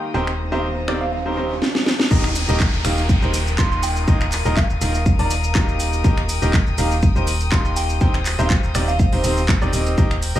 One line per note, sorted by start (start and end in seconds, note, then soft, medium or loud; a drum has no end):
0.00 0.11 D#3 medium
0.00 0.11 A#3 medium
0.00 0.11 D#4 medium
0.00 1.62 D#4 medium
0.00 0.11 G4 medium
0.00 0.11 A#4 medium
0.00 0.12 A#4 medium
0.00 0.84 A#4 medium
0.00 0.11 F5 medium
0.00 0.12 G5 medium
0.00 1.62 G5 medium
0.00 1.62 A#5 medium
0.00 1.58 D#6 medium
0.00 riser medium
0.14 1.62 D#1 medium
0.14 0.29 D#3 medium
0.14 0.28 C4 medium
0.14 0.28 D#4 medium
0.14 0.28 G4 medium
0.14 0.29 A#4 medium
0.14 1.60 C5 medium
0.14 0.29 C5 loud
0.14 0.29 G5 medium
0.14 1.60 A#5 medium
0.27 finger snap medium
0.35 1.62 C5 medium
0.52 0.65 D#3 medium
0.52 0.65 C4 medium
0.52 0.65 D#4 medium
0.52 0.65 G4 medium
0.52 0.65 A#4 medium
0.52 0.65 C5 medium
0.52 0.66 F5 medium
0.88 1.02 D#3 medium
0.88 1.02 C4 medium
0.88 1.02 D#4 medium
0.88 1.02 G4 medium
0.88 1.02 A#4 medium
0.88 1.02 D5 medium
0.88 finger snap medium
1.01 1.08 F5 medium
1.12 1.21 F5 medium
1.26 1.35 D#3 medium
1.26 1.35 C4 medium
1.26 1.35 D#4 medium
1.26 1.35 G4 medium
1.26 1.35 A#4 medium
1.26 1.35 C5 medium
1.37 1.51 D#3 medium
1.37 1.51 C4 medium
1.37 1.51 D#4 medium
1.37 1.51 G4 medium
1.37 1.51 A#4 medium
1.37 1.51 C5 medium
1.62 snare medium
1.75 snare medium
1.86 snare medium
1.99 snare medium
2.11 2.46 D#1 loud
2.11 2.25 D#3 loud
2.11 2.25 A#3 medium
2.11 2.25 D#4 medium
2.11 2.25 G4 medium
2.11 3.81 A#4 medium
2.11 2.25 A#4 medium
2.11 2.25 D#5 loud
2.11 3.81 G5 medium
2.11 9.94 D#6 medium
2.11 kick loud
2.11 downlifter medium
2.11 shaker soft
2.24 finger snap medium
2.24 shaker soft
2.35 open hi-hat loud
2.35 shaker medium
2.45 2.82 D#1 loud
2.45 2.61 D#3 medium
2.45 2.61 D#4 medium
2.45 2.61 G4 medium
2.45 8.80 A#4 medium
2.45 2.61 D#5 loud
2.45 shaker soft
2.49 2.61 A#3 medium
2.49 2.61 A#4 medium
2.60 kick loud
2.60 clap loud
2.60 shaker soft
2.73 shaker soft
2.85 3.20 D#1 loud
2.85 2.99 D#3 medium
2.85 2.99 A#3 medium
2.85 2.99 D#4 medium
2.85 2.99 G4 medium
2.85 2.99 A#4 medium
2.85 2.99 F5 loud
2.85 finger snap medium
2.85 open hi-hat loud
2.85 shaker medium
2.98 shaker soft
3.09 kick loud
3.09 shaker soft
3.22 3.56 D#1 loud
3.22 3.35 D#3 medium
3.22 3.35 A#3 medium
3.22 3.35 D#4 medium
3.22 3.35 G4 medium
3.22 3.35 A#4 medium
3.22 3.35 C5 medium
3.22 shaker soft
3.34 open hi-hat loud
3.34 shaker medium
3.47 shaker soft
3.58 4.05 D#1 loud
3.58 4.05 D#3 medium
3.58 4.05 A#3 medium
3.58 4.05 D#4 medium
3.58 4.05 F4 medium
3.58 4.05 A#4 medium
3.58 4.05 F5 medium
3.58 3.67 C6 medium
3.58 kick loud
3.58 clap loud
3.58 shaker soft
3.72 3.79 C6 medium
3.72 shaker soft
3.83 7.97 A#4 medium
3.83 5.78 F5 medium
3.83 3.98 G5 medium
3.83 open hi-hat loud
3.83 shaker medium
3.96 shaker soft
4.08 4.43 D#1 medium
4.08 4.22 D#3 loud
4.08 4.22 A#3 medium
4.08 4.22 D#4 medium
4.08 4.22 F4 medium
4.08 4.22 A#4 medium
4.08 4.22 D#5 loud
4.08 kick loud
4.08 shaker soft
4.21 finger snap medium
4.21 shaker soft
4.27 6.61 F5 medium
4.32 clap medium
4.32 open hi-hat loud
4.32 shaker medium
4.45 4.79 D#1 medium
4.45 4.58 D#3 medium
4.45 4.58 A#3 medium
4.45 4.58 D#4 medium
4.45 4.58 F4 medium
4.45 4.58 A#4 medium
4.45 4.58 D#5 loud
4.45 shaker soft
4.57 4.72 F5 medium
4.57 kick loud
4.57 clap loud
4.57 shaker soft
4.70 shaker soft
4.81 5.16 D#1 loud
4.81 4.96 D#3 medium
4.81 4.96 A#3 medium
4.81 4.96 D#4 medium
4.81 4.96 F4 medium
4.81 4.96 A#4 medium
4.81 4.96 F5 loud
4.81 open hi-hat loud
4.81 shaker medium
4.95 shaker soft
5.06 kick loud
5.06 shaker soft
5.19 5.53 D#1 loud
5.19 5.32 D#3 medium
5.19 5.32 A#3 medium
5.19 5.32 D#4 medium
5.19 5.32 F4 medium
5.19 5.32 A#4 medium
5.19 5.32 D5 medium
5.19 5.68 A#5 medium
5.19 open hi-hat medium
5.19 shaker soft
5.31 open hi-hat loud
5.31 shaker medium
5.44 shaker soft
5.55 6.02 D#1 loud
5.55 6.02 D#3 medium
5.55 6.02 A#3 medium
5.55 6.02 D#4 medium
5.55 6.02 G4 medium
5.55 6.02 A#4 medium
5.55 6.02 F5 medium
5.55 kick loud
5.55 clap loud
5.55 shaker soft
5.68 shaker soft
5.80 7.99 G5 medium
5.80 open hi-hat loud
5.80 shaker medium
5.93 shaker soft
6.04 6.39 D#1 loud
6.04 6.19 D#3 loud
6.04 6.19 A#3 medium
6.04 6.19 D#4 medium
6.04 6.19 G4 medium
6.04 6.19 A#4 medium
6.04 6.19 D#5 loud
6.04 kick loud
6.04 shaker soft
6.17 finger snap medium
6.17 shaker soft
6.29 open hi-hat loud
6.29 shaker medium
6.42 6.76 D#1 medium
6.42 6.55 D#3 medium
6.42 6.55 A#3 medium
6.42 6.55 D#4 medium
6.42 6.55 G4 medium
6.42 6.55 A#4 medium
6.42 6.55 D#5 loud
6.42 shaker soft
6.51 10.40 G5 loud
6.51 kick loud
6.51 clap loud
6.51 shaker soft
6.67 shaker soft
6.78 7.13 D#1 loud
6.78 6.92 D#3 medium
6.78 6.92 A#3 medium
6.78 6.92 D#4 medium
6.78 6.92 G4 medium
6.78 6.92 A#4 medium
6.78 6.92 F5 loud
6.78 open hi-hat loud
6.78 shaker medium
6.91 shaker soft
7.03 kick loud
7.03 shaker soft
7.16 7.50 D#1 loud
7.16 7.29 D#3 medium
7.16 7.29 A#3 medium
7.16 7.29 D#4 medium
7.16 7.29 G4 medium
7.16 7.29 A#4 medium
7.16 7.29 C5 medium
7.16 shaker soft
7.27 open hi-hat loud
7.27 shaker medium
7.40 shaker soft
7.52 7.99 D#1 loud
7.52 7.98 D#3 medium
7.52 7.98 A#3 medium
7.52 7.98 D#4 medium
7.52 7.98 G4 medium
7.52 7.98 A#4 medium
7.52 7.98 F5 medium
7.52 7.60 C6 medium
7.52 kick loud
7.52 clap loud
7.52 shaker soft
7.65 7.72 C6 medium
7.65 shaker soft
7.76 7.92 G5 medium
7.76 open hi-hat loud
7.76 shaker medium
7.90 shaker soft
8.01 8.36 D#1 loud
8.01 8.15 D#3 loud
8.01 8.15 C4 medium
8.01 8.15 D#4 medium
8.01 8.15 G4 medium
8.01 8.15 A#4 medium
8.01 9.96 C5 medium
8.01 8.15 C5 loud
8.01 8.16 G5 medium
8.01 9.96 A#5 medium
8.01 kick loud
8.01 shaker soft
8.14 finger snap medium
8.14 shaker soft
8.19 10.40 C5 medium
8.26 clap medium
8.26 open hi-hat loud
8.26 shaker medium
8.39 8.73 D#1 loud
8.39 8.52 D#3 medium
8.39 8.52 C4 medium
8.39 8.52 D#4 medium
8.39 8.52 G4 medium
8.39 8.52 A#4 medium
8.39 8.52 C5 loud
8.39 8.53 F5 medium
8.39 shaker soft
8.50 kick loud
8.50 clap loud
8.50 shaker soft
8.63 shaker soft
8.75 9.10 D#1 loud
8.75 8.89 D#3 medium
8.75 8.89 C4 medium
8.75 8.89 D#4 medium
8.75 8.89 G4 medium
8.75 8.89 A#4 medium
8.75 8.89 D5 loud
8.75 finger snap medium
8.75 open hi-hat loud
8.75 shaker medium
8.88 8.95 F5 medium
8.88 shaker soft
8.99 9.08 F5 medium
8.99 kick loud
8.99 shaker soft
9.13 9.22 D#1 loud
9.13 9.22 D#3 medium
9.13 9.22 C4 medium
9.13 9.22 D#4 medium
9.13 9.22 G4 medium
9.13 9.22 A#4 medium
9.13 9.22 C5 medium
9.13 open hi-hat medium
9.13 shaker soft
9.24 9.59 D#1 loud
9.24 9.38 D#3 medium
9.24 9.38 C4 medium
9.24 9.38 D#4 medium
9.24 9.38 G4 medium
9.24 9.38 A#4 medium
9.24 9.38 C5 medium
9.24 open hi-hat loud
9.24 shaker medium
9.37 shaker soft
9.49 kick loud
9.49 clap loud
9.49 shaker soft
9.62 9.71 D#1 medium
9.62 9.70 D#3 loud
9.62 9.70 C4 medium
9.62 9.70 D#4 medium
9.62 9.70 G4 medium
9.62 9.70 A#4 medium
9.62 9.70 D5 loud
9.62 shaker soft
9.73 9.96 D#1 medium
9.73 9.95 C4 medium
9.73 9.95 D#4 medium
9.73 9.95 G4 medium
9.73 9.95 A#4 medium
9.73 9.95 D#5 medium
9.73 open hi-hat loud
9.73 shaker medium
9.86 shaker soft
9.98 10.33 D#1 loud
9.98 10.12 D#3 loud
9.98 10.12 A#3 medium
9.98 10.12 D#4 medium
9.98 10.12 G4 medium
9.98 10.12 A#4 medium
9.98 10.40 A#4 medium
9.98 10.12 D#5 loud
9.98 10.40 G5 medium
9.98 10.40 G6 medium
9.98 kick loud
9.98 shaker soft
10.11 finger snap medium
10.11 shaker soft
10.21 10.40 A#4 medium
10.21 open hi-hat loud
10.21 shaker medium
10.35 10.40 D#1 medium
10.35 10.40 D#3 medium
10.35 10.40 A#3 medium
10.35 10.40 D#4 medium
10.35 10.40 G4 medium
10.35 10.40 A#4 medium
10.35 10.40 D#5 loud
10.35 shaker soft